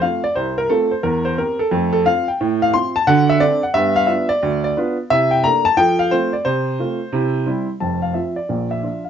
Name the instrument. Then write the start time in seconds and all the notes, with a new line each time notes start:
upright piano
0.02 A3 C4 F4 F5
0.24 D5
0.36 C2 C5
0.58 A#4
0.70 A3 C4 F4 A4
0.91 C5
1.03 E2 A#4
1.25 C5
1.38 C4 G4 A#4
1.59 A4
1.71 F2 A3
1.93 A4
2.06 C4 F4 F5
2.28 G5
2.41 A2
2.62 F5
2.74 C4 F4 C6
2.96 A5
3.07 D3 F#4 F#5
3.30 E5
3.40 C4 D4 A4 D5
3.63 F#5
3.74 G2 B3 E5
3.96 F5
4.07 B3 D4 F4 E5
4.29 D5
4.43 D2
4.64 D5
4.77 B3 D4 F4
5.10 C3 E4 E5
5.31 G5
5.44 A#3 D4 A4 A#5
5.65 A5
5.77 F3 A4 G5
5.99 F5
6.11 A3 C4 F4 C5
6.33 D5
6.45 C3 C5
6.79 A3 C4 F4
7.13 C3 E4
7.46 G3 C4 E4
7.80 F1 F2 A5
8.02 F5
8.14 F3 C4 F4 E5
8.36 D5
8.49 A#1 A#2
8.71 E5
8.83 F3 D4 F4
9.04 F5